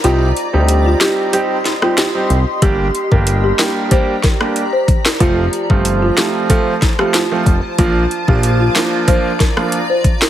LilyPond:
<<
  \new Staff \with { instrumentName = "Ambient pad" } { \time 4/4 \key g \minor \tempo 4 = 93 << { <ees'' c'''>1 | <d'' bes''>1 | <c'' a''>1 | <d'' bes''>1 | } \\ { g'1~ | g'1 | f'1~ | f'1 | } >> }
  \new Staff \with { instrumentName = "Marimba" } { \time 4/4 \key g \minor f'16 r8 g'16 r16 f'16 g'16 r16 g'16 r8 f'16 g'8. r16 | g'16 r8 bes'16 r16 g'16 bes'16 r16 c''16 r16 bes'16 r8 c''16 r16 bes'16 | f'16 r8 g'16 r16 f'16 g'16 r16 a'16 r8 g'16 f'8. r16 | f'16 r8 g'16 r16 f'16 bes'16 r16 c''16 r16 bes'16 r8 c''16 r16 bes'16 | }
  \new Staff \with { instrumentName = "Grand piano" } { \time 4/4 \key g \minor <g c' ees' g'>16 r8 <g c' ees' g'>8. <g c' ees' g'>8 <g c' ees' g'>16 r8 <g c' ees' g'>16 r16 <g c' ees' g'>16 r8 | <g bes d' g'>16 r8 <g bes d' g'>8. <g bes d' g'>8 <g bes d' g'>16 r8 <g bes d' g'>16 r4 | <f a c' f'>16 r8 <f a c' f'>8. <f a c' f'>8 <f a c' f'>16 r8 <f a c' f'>16 r16 <f a c' f'>16 r8 | <f bes d' f'>16 r8 <f bes d' f'>8. <f bes d' f'>8 <f bes d' f'>16 r8 <f bes d' f'>16 r4 | }
  \new Staff \with { instrumentName = "Analog synth bass" } { \clef bass \time 4/4 \key g \minor c,8 r16 d,8. r2 c,16 r16 | g,,8 r16 g,,8. r2 r8 | f,,8 r16 g,,8. r2 f,,16 r16 | bes,,8 r16 bes,,8. r2 r8 | }
  \new DrumStaff \with { instrumentName = "Drums" } \drummode { \time 4/4 hh8 hh8 hh8 <hc hh sn>8 hh8 <hh sn>16 ss16 <hc hh sn>8 hh8 | <hh bd>8 hh16 bd16 hh8 <hc hh sn>8 <hh bd>8 <hh bd sn>16 ss16 hh8 <hh bd>16 <hc sn>16 | <hh bd>8 hh16 bd16 hh8 <hc hh sn>8 <hh bd>8 <hh bd sn>16 ss16 <hc hh sn>8 <hh bd>8 | <hh bd>8 hh16 bd16 hh8 <hc hh sn>8 <hh bd>8 <hh bd sn>16 ss16 hh8 <hh bd>16 <hc sn>16 | }
>>